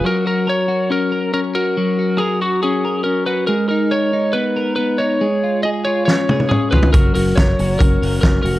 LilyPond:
<<
  \new Staff \with { instrumentName = "Lead electric guitar" } { \time 4/4 \key fis \major \tempo 4 = 139 ais'8 ais'8 cis''4 ais'4 ais'8 ais'8~ | ais'4 gis'8 fis'8 gis'4 ais'8 b'8 | ais'8 ais'8 cis''4 b'4 b'8 cis''8~ | cis''4 dis''8 cis''8 cis''4 gis'8 b'8 |
ais'8 ais'8 cis''4 ais'4 ais'8 ais'8 | }
  \new Staff \with { instrumentName = "Clean electric guitar" } { \time 4/4 \key fis \major fis8 fis'8 ais'8 fis'8 cis'8 ais'8 cis'8 fis'8 | fis8 fis'8 ais'8 fis'8 cis'8 ais'8 cis'8 fis'8 | gis8 dis'8 ais'8 dis'8 b8 ais'8 b8 dis'8 | gis8 eis'8 gis'8 eis'8 cis'8 gis'8 cis'8 eis'8 |
fis8 fis'8 ais'8 fis'8 cis'8 ais'8 cis'8 fis'8 | }
  \new Staff \with { instrumentName = "Fingered electric bass" } { \clef bass \time 4/4 \key fis \major r1 | r1 | r1 | r1 |
fis,,8 fis,,8 fis,,8 fis,,8 fis,,8 fis,,8 fis,,8 eis,,8 | }
  \new DrumStaff \with { instrumentName = "Drums" } \drummode { \time 4/4 r4 r4 r4 r4 | r4 r4 r4 r4 | r4 r4 r4 r4 | r4 r4 sn8 tommh16 tommh16 toml8 tomfh16 tomfh16 |
<hh bd>8 hho8 <hh bd sn>8 hho8 <hh bd>8 hho8 <hh bd sn>8 hho8 | }
>>